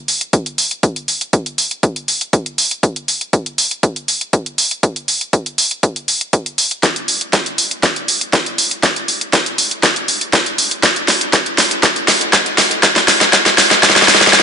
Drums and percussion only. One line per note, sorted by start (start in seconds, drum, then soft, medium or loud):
0.08 open hi-hat loud
0.21 closed hi-hat soft
0.33 kick loud
0.33 closed hi-hat medium
0.46 closed hi-hat soft
0.58 open hi-hat loud
0.71 closed hi-hat soft
0.83 kick loud
0.83 closed hi-hat medium
0.96 closed hi-hat soft
1.08 open hi-hat loud
1.21 closed hi-hat soft
1.33 kick loud
1.33 closed hi-hat medium
1.46 closed hi-hat soft
1.58 open hi-hat loud
1.71 closed hi-hat soft
1.83 kick loud
1.83 closed hi-hat medium
1.96 closed hi-hat soft
2.08 open hi-hat loud
2.21 closed hi-hat soft
2.33 kick loud
2.33 closed hi-hat medium
2.46 closed hi-hat soft
2.58 open hi-hat loud
2.71 closed hi-hat soft
2.83 kick loud
2.83 closed hi-hat medium
2.96 closed hi-hat soft
3.08 open hi-hat loud
3.21 closed hi-hat soft
3.33 kick loud
3.33 closed hi-hat medium
3.46 closed hi-hat soft
3.58 open hi-hat loud
3.71 closed hi-hat soft
3.83 kick loud
3.83 closed hi-hat medium
3.96 closed hi-hat soft
4.08 open hi-hat loud
4.21 closed hi-hat soft
4.33 kick loud
4.33 closed hi-hat medium
4.46 closed hi-hat soft
4.58 open hi-hat loud
4.71 closed hi-hat soft
4.83 kick loud
4.83 closed hi-hat medium
4.96 closed hi-hat soft
5.08 open hi-hat loud
5.21 closed hi-hat soft
5.33 kick loud
5.33 closed hi-hat medium
5.46 closed hi-hat soft
5.58 open hi-hat loud
5.71 closed hi-hat soft
5.83 kick loud
5.83 closed hi-hat medium
5.96 closed hi-hat soft
6.08 open hi-hat loud
6.21 closed hi-hat soft
6.33 kick loud
6.33 closed hi-hat medium
6.46 closed hi-hat soft
6.58 open hi-hat loud
6.71 closed hi-hat soft
6.83 kick loud
6.83 snare soft
6.83 closed hi-hat medium
6.96 closed hi-hat soft
7.08 open hi-hat loud
7.21 closed hi-hat soft
7.33 kick loud
7.33 snare soft
7.33 closed hi-hat medium
7.46 closed hi-hat soft
7.58 open hi-hat loud
7.71 closed hi-hat soft
7.83 kick loud
7.83 snare medium
7.83 closed hi-hat medium
7.96 closed hi-hat soft
8.08 open hi-hat loud
8.21 closed hi-hat soft
8.33 kick loud
8.33 snare medium
8.33 closed hi-hat medium
8.46 closed hi-hat soft
8.58 open hi-hat loud
8.71 closed hi-hat soft
8.83 kick loud
8.83 snare medium
8.83 closed hi-hat medium
8.96 closed hi-hat soft
9.08 open hi-hat loud
9.21 closed hi-hat soft
9.33 kick loud
9.33 snare medium
9.33 closed hi-hat medium
9.46 closed hi-hat soft
9.58 open hi-hat loud
9.71 closed hi-hat soft
9.83 kick loud
9.83 snare medium
9.83 closed hi-hat medium
9.96 closed hi-hat soft
10.08 open hi-hat loud
10.21 closed hi-hat soft
10.33 kick loud
10.33 snare medium
10.33 closed hi-hat medium
10.46 closed hi-hat soft
10.58 open hi-hat loud
10.71 closed hi-hat soft
10.83 kick loud
10.83 snare medium
10.83 closed hi-hat medium
10.96 closed hi-hat soft
11.08 snare medium
11.08 open hi-hat loud
11.21 closed hi-hat soft
11.33 kick loud
11.33 snare medium
11.33 closed hi-hat medium
11.46 closed hi-hat soft
11.58 snare medium
11.58 open hi-hat loud
11.71 closed hi-hat soft
11.83 kick loud
11.83 snare medium
11.83 closed hi-hat medium
11.96 closed hi-hat soft
12.08 snare medium
12.08 open hi-hat loud
12.21 closed hi-hat soft
12.33 kick loud
12.33 snare medium
12.33 closed hi-hat medium
12.46 closed hi-hat soft
12.58 snare medium
12.58 open hi-hat loud
12.71 closed hi-hat soft
12.83 kick loud
12.83 snare medium
12.83 closed hi-hat medium
12.96 snare medium
12.96 closed hi-hat soft
13.08 snare medium
13.08 open hi-hat medium
13.21 snare medium
13.21 closed hi-hat soft
13.33 kick loud
13.33 snare loud
13.33 closed hi-hat medium
13.46 snare medium
13.46 closed hi-hat soft
13.58 snare loud
13.58 open hi-hat loud
13.71 snare medium
13.71 closed hi-hat soft
13.83 kick loud
13.83 snare loud
13.83 closed hi-hat medium
13.90 snare medium
13.96 snare medium
13.96 closed hi-hat soft
14.02 snare medium
14.08 snare loud
14.08 open hi-hat loud
14.15 snare medium
14.21 kick medium
14.21 snare medium
14.21 closed hi-hat soft
14.27 snare loud
14.33 kick loud
14.33 snare loud
14.33 closed hi-hat medium